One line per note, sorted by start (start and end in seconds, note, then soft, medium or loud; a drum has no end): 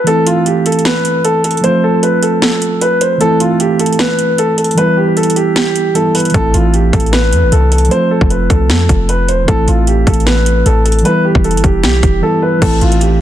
0.04 1.59 E3 medium
0.04 1.60 A3 medium
0.04 0.25 A4 loud
0.04 closed hi-hat medium
0.08 1.61 C4 medium
0.08 1.62 E4 medium
0.26 0.44 F4 medium
0.26 closed hi-hat medium
0.46 0.64 G4 medium
0.46 closed hi-hat medium
0.66 0.84 A4 medium
0.66 closed hi-hat medium
0.72 closed hi-hat medium
0.79 closed hi-hat soft
0.85 1.22 B4 medium
0.85 snare loud
0.85 closed hi-hat medium
1.05 closed hi-hat medium
1.24 1.42 A4 medium
1.24 closed hi-hat medium
1.44 1.62 A4 medium
1.44 closed hi-hat medium
1.51 closed hi-hat medium
1.57 3.16 F3 medium
1.57 closed hi-hat medium
1.63 3.17 A3 medium
1.63 3.18 C4 medium
1.63 1.81 C5 loud
1.63 closed hi-hat medium
1.67 3.19 F4 medium
1.83 2.01 A4 medium
2.03 2.21 B4 medium
2.03 closed hi-hat medium
2.22 2.40 A4 medium
2.22 closed hi-hat medium
2.42 2.79 A4 medium
2.42 snare loud
2.42 closed hi-hat medium
2.62 closed hi-hat medium
2.81 2.99 B4 medium
2.81 closed hi-hat medium
3.01 3.19 C5 medium
3.01 closed hi-hat medium
3.17 4.73 E3 medium
3.17 4.74 A3 medium
3.17 3.38 A4 loud
3.17 closed hi-hat medium
3.22 4.75 C4 medium
3.22 4.76 E4 medium
3.40 3.58 F4 medium
3.40 closed hi-hat medium
3.60 3.78 G4 medium
3.60 closed hi-hat medium
3.80 3.97 A4 medium
3.80 closed hi-hat medium
3.86 closed hi-hat medium
3.93 closed hi-hat soft
3.99 4.36 B4 medium
3.99 snare loud
3.99 closed hi-hat medium
4.19 closed hi-hat medium
4.38 4.56 A4 medium
4.38 closed hi-hat medium
4.57 4.75 A4 medium
4.57 closed hi-hat medium
4.64 closed hi-hat medium
4.71 5.91 E3 medium
4.71 closed hi-hat medium
4.76 5.92 G3 medium
4.76 5.93 B3 medium
4.76 4.95 B4 loud
4.76 closed hi-hat medium
4.81 5.94 E4 medium
4.97 5.15 G4 medium
5.17 5.34 A4 medium
5.17 closed hi-hat soft
5.23 closed hi-hat medium
5.30 closed hi-hat medium
5.36 5.54 G4 medium
5.36 closed hi-hat medium
5.55 5.93 G4 loud
5.55 snare loud
5.55 closed hi-hat medium
5.76 closed hi-hat medium
5.94 6.30 E3 soft
5.94 6.34 G3 soft
5.94 6.35 B3 medium
5.94 6.35 E4 medium
5.94 6.13 A4 medium
5.94 closed hi-hat medium
6.15 6.32 B4 medium
6.15 closed hi-hat medium
6.15 open hi-hat medium
6.20 closed hi-hat medium
6.25 closed hi-hat medium
6.30 7.86 E3 medium
6.30 7.88 A3 medium
6.30 closed hi-hat medium
6.34 6.53 A1 loud
6.34 7.89 C4 medium
6.34 7.90 E4 medium
6.34 6.52 A4 loud
6.34 kick loud
6.34 closed hi-hat medium
6.54 6.92 A1 loud
6.54 6.72 F4 medium
6.54 closed hi-hat medium
6.73 6.91 G4 medium
6.73 closed hi-hat medium
6.93 7.34 A1 loud
6.93 7.11 A4 medium
6.93 kick medium
6.93 closed hi-hat medium
7.00 closed hi-hat medium
7.06 closed hi-hat soft
7.13 7.50 B4 medium
7.13 snare loud
7.13 closed hi-hat medium
7.32 7.44 E2 loud
7.32 closed hi-hat medium
7.43 7.52 A1 loud
7.52 7.90 C2 loud
7.52 7.70 A4 medium
7.52 closed hi-hat medium
7.72 7.89 A4 medium
7.72 closed hi-hat medium
7.78 closed hi-hat medium
7.85 9.43 F3 medium
7.85 closed hi-hat medium
7.90 9.44 A3 medium
7.90 9.46 C4 medium
7.90 8.09 C5 loud
7.90 closed hi-hat medium
7.94 9.47 F4 medium
8.11 8.29 A4 medium
8.21 8.49 F1 loud
8.21 kick loud
8.30 8.48 B4 medium
8.30 closed hi-hat medium
8.50 8.71 C2 loud
8.50 8.68 A4 medium
8.50 kick medium
8.50 closed hi-hat medium
8.70 8.88 F2 loud
8.70 9.07 A4 medium
8.70 snare loud
8.70 closed hi-hat medium
8.89 9.30 F1 loud
8.89 kick medium
8.89 closed hi-hat medium
9.09 9.27 B4 medium
9.09 closed hi-hat medium
9.29 9.47 E1 loud
9.29 9.46 C5 medium
9.29 closed hi-hat medium
9.45 9.67 A1 loud
9.45 11.00 E3 medium
9.45 11.01 A3 medium
9.45 9.66 A4 loud
9.45 kick loud
9.45 closed hi-hat medium
9.49 11.02 C4 medium
9.49 11.03 E4 medium
9.68 10.05 A1 loud
9.68 9.85 F4 medium
9.68 closed hi-hat medium
9.87 10.05 G4 medium
9.87 closed hi-hat medium
10.07 10.63 A1 loud
10.07 10.25 A4 medium
10.07 kick medium
10.07 closed hi-hat medium
10.14 closed hi-hat medium
10.20 closed hi-hat soft
10.26 10.63 B4 medium
10.26 snare loud
10.26 closed hi-hat medium
10.46 closed hi-hat medium
10.66 11.03 A1 loud
10.66 10.83 A4 medium
10.66 closed hi-hat medium
10.85 11.03 A4 medium
10.85 closed hi-hat medium
10.92 closed hi-hat medium
10.99 12.19 E3 medium
10.99 closed hi-hat medium
11.04 12.20 G3 medium
11.04 12.21 B3 medium
11.04 11.23 B4 loud
11.04 closed hi-hat medium
11.08 12.22 E4 medium
11.24 11.42 G4 medium
11.35 11.56 E1 loud
11.35 kick loud
11.44 11.62 A4 medium
11.44 closed hi-hat soft
11.51 11.63 G1 loud
11.51 closed hi-hat medium
11.57 closed hi-hat medium
11.64 11.85 E1 loud
11.64 11.81 G4 medium
11.64 kick medium
11.64 closed hi-hat medium
11.83 12.02 B1 loud
11.83 12.20 G4 medium
11.83 snare loud
11.83 closed hi-hat medium
12.03 12.22 E1 loud
12.03 kick medium
12.03 closed hi-hat medium
12.21 12.57 E3 soft
12.21 12.62 G3 soft
12.21 12.62 B3 medium
12.21 12.63 E4 medium
12.21 12.40 A4 medium
12.42 12.60 B4 medium
12.59 12.81 A1 loud
12.59 13.21 E3 medium
12.59 13.21 A3 medium
12.59 12.79 A4 loud
12.59 kick loud
12.59 closed hi-hat medium
12.59 crash loud
12.63 13.21 C4 medium
12.63 13.21 E4 medium
12.81 13.19 A1 loud
12.81 12.99 F4 medium
12.81 closed hi-hat medium
12.92 closed hi-hat medium
13.01 13.19 G4 medium
13.01 closed hi-hat medium